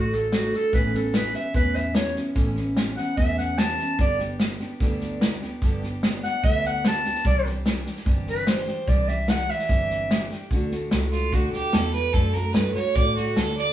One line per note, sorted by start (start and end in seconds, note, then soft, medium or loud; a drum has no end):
0.00 0.51 A1 medium
0.00 0.31 D3 medium
0.00 0.32 A3 medium
0.00 0.32 D4 medium
0.00 0.15 F#4 loud
0.00 0.32 F#4 medium
0.12 0.33 A4 medium
0.12 snare soft
0.32 0.73 D3 medium
0.32 0.74 A3 medium
0.32 0.74 D4 medium
0.32 0.74 F#4 medium
0.32 0.53 F#4 medium
0.32 snare loud
0.32 hi-hat pedal medium
0.53 0.73 A4 medium
0.53 snare soft
0.73 1.33 A1 medium
0.73 0.94 A2 medium
0.73 0.94 E3 medium
0.73 0.94 B3 medium
0.73 0.93 C#4 medium
0.73 0.92 E4 medium
0.73 0.94 B4 medium
0.73 kick loud
0.73 snare soft
0.93 1.13 B3 soft
0.93 1.13 C#4 soft
0.93 1.14 E4 soft
0.93 1.18 A4 medium
0.93 snare soft
1.12 1.54 E3 medium
1.12 1.55 B3 medium
1.12 1.54 C#4 medium
1.12 1.55 E4 medium
1.12 1.35 B4 medium
1.12 snare loud
1.12 hi-hat pedal medium
1.34 1.55 E5 medium
1.34 snare soft
1.54 2.14 E2 medium
1.54 1.95 A2 medium
1.54 1.94 E3 medium
1.54 1.95 B3 medium
1.54 1.95 C#4 medium
1.54 1.96 E4 medium
1.54 1.77 B4 medium
1.54 kick loud
1.54 snare soft
1.75 1.96 E5 medium
1.75 snare soft
1.95 2.16 E3 medium
1.95 2.16 B3 medium
1.95 2.15 C#4 medium
1.95 2.14 E4 medium
1.95 2.15 C#5 medium
1.95 snare loud
1.95 hi-hat pedal medium
2.15 2.35 B3 soft
2.15 2.35 C#4 soft
2.15 2.35 E4 soft
2.15 snare soft
2.35 2.96 A1 medium
2.35 2.56 A2 medium
2.35 2.56 E3 medium
2.35 2.57 B3 medium
2.35 2.56 C#4 medium
2.35 2.55 E4 medium
2.35 kick loud
2.35 snare soft
2.56 2.75 B3 medium
2.56 2.76 C#4 medium
2.56 2.77 E4 medium
2.56 snare soft
2.75 2.97 E3 medium
2.75 2.97 B3 medium
2.75 2.96 C#4 medium
2.75 2.95 E4 medium
2.75 snare loud
2.75 hi-hat pedal medium
2.96 3.17 B3 soft
2.96 3.17 C#4 soft
2.96 3.17 E4 medium
2.96 3.16 F#5 medium
2.96 snare soft
3.17 3.77 E2 medium
3.17 3.58 A2 medium
3.17 3.56 E3 medium
3.17 3.57 B3 medium
3.17 3.57 C#4 medium
3.17 3.58 E4 medium
3.17 3.37 E5 loud
3.17 kick loud
3.17 snare soft
3.38 3.59 F#5 medium
3.38 snare soft
3.57 3.78 E3 soft
3.57 3.79 B3 medium
3.57 3.79 C#4 medium
3.57 3.78 E4 medium
3.57 3.98 A5 medium
3.57 snare loud
3.57 hi-hat pedal medium
3.79 3.99 B3 soft
3.79 4.00 C#4 soft
3.79 3.99 E4 soft
3.79 snare soft
3.99 4.59 G1 medium
3.99 4.20 G2 medium
3.99 4.20 D3 medium
3.99 4.20 G3 medium
3.99 4.19 B3 medium
3.99 4.19 D4 medium
3.99 4.18 G4 medium
3.99 4.20 D5 medium
3.99 kick loud
3.99 snare soft
4.19 4.37 G3 soft
4.19 4.39 B3 soft
4.19 4.39 D4 soft
4.19 4.40 G4 medium
4.19 snare soft
4.39 4.60 G3 medium
4.39 4.60 B3 medium
4.39 4.61 D4 medium
4.39 4.59 G4 medium
4.39 snare loud
4.39 hi-hat pedal medium
4.59 4.80 G3 soft
4.59 4.81 B3 soft
4.59 4.81 D4 medium
4.59 4.81 G4 medium
4.59 snare soft
4.80 5.40 D2 medium
4.80 5.22 G2 medium
4.80 5.22 D3 medium
4.80 5.22 G3 medium
4.80 5.22 B3 medium
4.80 5.24 D4 medium
4.80 5.24 G4 medium
4.80 kick loud
4.80 snare soft
5.00 snare soft
5.21 5.42 G3 medium
5.21 5.42 B3 medium
5.21 5.41 D4 medium
5.21 5.41 G4 medium
5.21 snare loud
5.21 hi-hat pedal medium
5.42 5.61 G3 soft
5.42 5.62 B3 soft
5.42 5.62 D4 medium
5.42 5.62 G4 soft
5.42 snare soft
5.62 6.22 G1 medium
5.62 5.83 G2 medium
5.62 5.83 D3 medium
5.62 5.83 G3 medium
5.62 5.82 B3 loud
5.62 5.82 D4 medium
5.62 5.81 G4 medium
5.62 kick loud
5.62 snare soft
5.82 6.01 G3 soft
5.82 6.02 B3 medium
5.82 6.02 D4 medium
5.82 6.03 G4 medium
5.82 snare soft
6.02 6.44 G3 medium
6.02 6.44 B3 medium
6.02 6.45 D4 medium
6.02 6.45 G4 medium
6.02 snare loud
6.02 hi-hat pedal medium
6.24 6.43 F#5 loud
6.24 snare soft
6.44 7.03 D2 medium
6.44 6.85 G2 medium
6.44 6.85 D3 medium
6.44 6.84 G3 medium
6.44 6.84 B3 medium
6.44 6.85 D4 medium
6.44 6.86 G4 medium
6.44 6.64 E5 loud
6.44 kick loud
6.44 snare soft
6.64 6.85 F#5 medium
6.64 snare soft
6.84 7.05 G3 medium
6.84 7.05 B3 medium
6.84 7.05 D4 medium
6.84 7.04 G4 medium
6.84 7.26 A5 medium
6.84 snare loud
6.84 hi-hat pedal medium
7.05 7.25 G3 soft
7.05 7.25 B3 soft
7.05 7.25 D4 soft
7.05 7.25 G4 medium
7.05 snare soft
7.15 snare soft
7.25 7.85 C2 medium
7.25 7.46 C3 medium
7.25 7.46 E3 medium
7.25 7.46 G3 medium
7.25 7.45 D4 medium
7.25 7.44 G4 medium
7.25 7.46 D5 medium
7.25 kick loud
7.25 snare soft
7.45 7.66 G3 soft
7.45 7.66 D4 medium
7.45 7.66 G4 medium
7.45 snare soft
7.65 7.86 E3 medium
7.65 7.86 G3 medium
7.65 7.85 D4 medium
7.65 7.84 G4 medium
7.65 snare loud
7.65 hi-hat pedal medium
7.85 8.05 G3 soft
7.85 8.05 D4 medium
7.85 8.05 G4 medium
7.85 snare soft
7.96 snare soft
8.05 8.66 G1 medium
8.05 8.47 C3 medium
8.05 8.46 E3 medium
8.05 8.46 G3 medium
8.05 8.47 D4 medium
8.05 8.47 G4 medium
8.05 kick loud
8.05 snare soft
8.27 8.47 B4 loud
8.27 snare soft
8.47 8.68 E3 medium
8.47 8.68 G3 medium
8.47 8.67 D4 medium
8.47 8.66 G4 medium
8.47 8.90 C5 medium
8.47 snare loud
8.47 hi-hat pedal medium
8.67 8.87 G3 soft
8.67 8.88 D4 soft
8.67 8.88 G4 medium
8.67 snare soft
8.87 9.47 C2 medium
8.87 9.08 C3 medium
8.87 9.09 E3 medium
8.87 9.08 G3 medium
8.87 9.08 D4 medium
8.87 9.07 G4 medium
8.87 9.10 D5 medium
8.87 kick loud
8.87 snare soft
9.08 9.28 G3 soft
9.08 9.29 D4 soft
9.08 9.29 G4 medium
9.08 9.31 E5 medium
9.08 snare soft
9.28 9.68 E3 medium
9.28 9.68 G3 medium
9.28 9.69 D4 medium
9.28 9.69 G4 medium
9.28 9.52 F#5 loud
9.28 snare loud
9.28 hi-hat pedal medium
9.49 10.29 E5 loud
9.49 snare soft
9.59 snare soft
9.69 10.29 G1 medium
9.69 10.10 C3 medium
9.69 10.08 E3 medium
9.69 10.09 G3 medium
9.69 10.10 D4 medium
9.69 10.10 G4 medium
9.69 kick loud
9.69 snare soft
9.90 snare soft
10.09 10.30 E3 medium
10.09 10.31 G3 medium
10.09 10.30 D4 medium
10.09 10.29 G4 medium
10.09 snare loud
10.09 hi-hat pedal medium
10.30 10.52 G3 soft
10.30 10.52 D4 soft
10.30 10.51 G4 medium
10.30 snare soft
10.51 10.91 D2 medium
10.51 10.72 D3 medium
10.51 10.72 A3 medium
10.51 10.72 D4 medium
10.51 10.71 F#4 medium
10.51 kick loud
10.51 snare soft
10.71 10.91 A3 soft
10.71 10.91 D4 medium
10.71 10.92 F#4 medium
10.71 snare soft
10.91 11.32 C#2 medium
10.91 11.32 A3 medium
10.91 11.32 D4 medium
10.91 11.33 F#4 medium
10.91 snare loud
10.91 hi-hat pedal medium
11.12 11.35 F4 medium
11.12 snare soft
11.32 11.52 D2 medium
11.32 11.72 D3 medium
11.32 11.74 A3 medium
11.32 11.74 D4 medium
11.32 11.52 F#4 medium
11.32 11.74 F#4 medium
11.32 kick loud
11.32 snare soft
11.53 11.75 G4 medium
11.53 muted fingered electric bass stroke soft
11.53 snare soft
11.73 12.13 E2 medium
11.73 12.13 D3 medium
11.73 12.14 A3 medium
11.73 12.13 D4 medium
11.73 12.14 F#4 medium
11.73 11.93 A4 medium
11.73 snare loud
11.73 hi-hat pedal medium
11.94 12.15 B4 loud
11.94 snare soft
12.13 12.54 F#2 medium
12.13 12.35 D3 medium
12.13 12.35 A3 medium
12.13 12.34 D4 medium
12.13 12.33 F#4 medium
12.13 12.35 A4 medium
12.13 kick loud
12.13 snare soft
12.33 12.54 A3 soft
12.33 12.54 D4 medium
12.33 12.55 F#4 medium
12.33 12.54 A#4 medium
12.33 snare soft
12.53 12.74 G2 medium
12.53 12.75 D3 medium
12.53 12.76 A3 medium
12.53 12.75 D4 medium
12.53 12.74 F#4 medium
12.53 12.73 B4 medium
12.53 snare loud
12.53 hi-hat pedal medium
12.74 12.96 A3 soft
12.74 12.96 D4 soft
12.74 12.96 F#4 medium
12.74 12.97 C#5 medium
12.74 muted fingered electric bass stroke soft
12.74 snare soft
12.95 13.35 A2 medium
12.95 13.36 D3 medium
12.95 13.37 A3 medium
12.95 13.37 D4 medium
12.95 13.38 F#4 medium
12.95 13.16 D5 loud
12.95 kick loud
12.95 snare soft
13.16 13.38 F#4 medium
13.16 snare soft
13.37 13.73 D2 medium
13.37 13.73 D3 medium
13.37 13.73 A3 medium
13.37 13.73 D4 medium
13.37 13.73 F#4 medium
13.37 13.57 A4 medium
13.37 snare loud
13.37 hi-hat pedal medium
13.57 13.73 D5 loud
13.57 snare soft